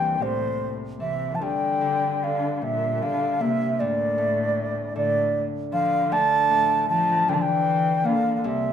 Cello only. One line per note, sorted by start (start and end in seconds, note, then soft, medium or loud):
0.00 0.22 E3 medium
0.21 0.74 A2 medium
1.00 1.35 C3 medium
1.33 1.42 F3 medium
1.40 2.23 D3 medium
2.23 2.57 D3 medium
2.57 2.64 D3 soft
2.63 3.04 A#2 medium
3.02 3.43 D3 medium
3.41 3.82 C3 medium
3.80 4.96 A2 medium
4.96 5.43 A2 medium
5.73 6.12 D3 medium
6.12 6.89 D3 medium
6.90 7.31 F3 medium
7.29 7.37 D3 medium
7.35 7.44 F3 medium
7.43 8.07 E3 medium
8.06 8.37 D3 medium
8.37 8.47 D3 soft
8.46 8.73 C3 medium